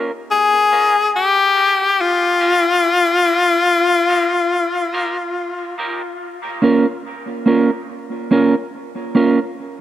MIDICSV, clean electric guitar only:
0, 0, Header, 1, 2, 480
1, 0, Start_track
1, 0, Tempo, 843882
1, 1607, Time_signature, 4, 2, 24, 8
1, 5578, End_track
2, 0, Start_track
2, 0, Title_t, "Clean electric guitar"
2, 0, Program_c, 0, 27
2, 0, Note_on_c, 0, 58, 79
2, 0, Note_on_c, 0, 61, 68
2, 0, Note_on_c, 0, 65, 75
2, 0, Note_on_c, 0, 70, 76
2, 58, Note_off_c, 0, 58, 0
2, 59, Note_off_c, 0, 61, 0
2, 60, Note_off_c, 0, 65, 0
2, 62, Note_off_c, 0, 70, 0
2, 407, Note_on_c, 0, 58, 73
2, 411, Note_on_c, 0, 61, 73
2, 414, Note_on_c, 0, 65, 73
2, 415, Note_on_c, 0, 70, 86
2, 536, Note_off_c, 0, 58, 0
2, 538, Note_off_c, 0, 61, 0
2, 539, Note_off_c, 0, 65, 0
2, 540, Note_off_c, 0, 70, 0
2, 883, Note_on_c, 0, 58, 78
2, 887, Note_on_c, 0, 61, 88
2, 891, Note_on_c, 0, 65, 84
2, 893, Note_on_c, 0, 70, 92
2, 1014, Note_off_c, 0, 58, 0
2, 1016, Note_off_c, 0, 61, 0
2, 1018, Note_off_c, 0, 65, 0
2, 1019, Note_off_c, 0, 70, 0
2, 1361, Note_on_c, 0, 58, 73
2, 1365, Note_on_c, 0, 61, 92
2, 1369, Note_on_c, 0, 65, 85
2, 1372, Note_on_c, 0, 70, 100
2, 1493, Note_off_c, 0, 58, 0
2, 1495, Note_off_c, 0, 61, 0
2, 1497, Note_off_c, 0, 65, 0
2, 1499, Note_off_c, 0, 70, 0
2, 1844, Note_on_c, 0, 58, 76
2, 1847, Note_on_c, 0, 63, 70
2, 1850, Note_on_c, 0, 67, 78
2, 1854, Note_on_c, 0, 70, 72
2, 1975, Note_off_c, 0, 58, 0
2, 1976, Note_off_c, 0, 63, 0
2, 1977, Note_off_c, 0, 67, 0
2, 1979, Note_off_c, 0, 70, 0
2, 2323, Note_on_c, 0, 58, 79
2, 2328, Note_on_c, 0, 63, 83
2, 2330, Note_on_c, 0, 67, 79
2, 2333, Note_on_c, 0, 70, 88
2, 2454, Note_off_c, 0, 58, 0
2, 2456, Note_off_c, 0, 63, 0
2, 2457, Note_off_c, 0, 67, 0
2, 2459, Note_off_c, 0, 70, 0
2, 2802, Note_on_c, 0, 58, 85
2, 2807, Note_on_c, 0, 63, 89
2, 2809, Note_on_c, 0, 67, 95
2, 2812, Note_on_c, 0, 70, 100
2, 2934, Note_off_c, 0, 58, 0
2, 2936, Note_off_c, 0, 63, 0
2, 2937, Note_off_c, 0, 67, 0
2, 2938, Note_off_c, 0, 70, 0
2, 3287, Note_on_c, 0, 58, 83
2, 3291, Note_on_c, 0, 63, 86
2, 3294, Note_on_c, 0, 67, 94
2, 3296, Note_on_c, 0, 70, 95
2, 3416, Note_off_c, 0, 58, 0
2, 3418, Note_off_c, 0, 63, 0
2, 3419, Note_off_c, 0, 67, 0
2, 3421, Note_off_c, 0, 70, 0
2, 3765, Note_on_c, 0, 58, 76
2, 3769, Note_on_c, 0, 61, 77
2, 3774, Note_on_c, 0, 65, 69
2, 3776, Note_on_c, 0, 70, 81
2, 3895, Note_off_c, 0, 58, 0
2, 3897, Note_off_c, 0, 61, 0
2, 3899, Note_off_c, 0, 65, 0
2, 3901, Note_off_c, 0, 70, 0
2, 4243, Note_on_c, 0, 58, 74
2, 4248, Note_on_c, 0, 61, 69
2, 4250, Note_on_c, 0, 65, 77
2, 4253, Note_on_c, 0, 70, 73
2, 4374, Note_off_c, 0, 58, 0
2, 4377, Note_off_c, 0, 61, 0
2, 4378, Note_off_c, 0, 65, 0
2, 4379, Note_off_c, 0, 70, 0
2, 4726, Note_on_c, 0, 58, 77
2, 4730, Note_on_c, 0, 61, 90
2, 4732, Note_on_c, 0, 65, 84
2, 4737, Note_on_c, 0, 70, 83
2, 4856, Note_off_c, 0, 58, 0
2, 4858, Note_off_c, 0, 61, 0
2, 4859, Note_off_c, 0, 65, 0
2, 4861, Note_off_c, 0, 70, 0
2, 5203, Note_on_c, 0, 58, 80
2, 5207, Note_on_c, 0, 61, 86
2, 5212, Note_on_c, 0, 65, 91
2, 5214, Note_on_c, 0, 70, 86
2, 5335, Note_off_c, 0, 58, 0
2, 5336, Note_off_c, 0, 61, 0
2, 5339, Note_off_c, 0, 65, 0
2, 5340, Note_off_c, 0, 70, 0
2, 5578, End_track
0, 0, End_of_file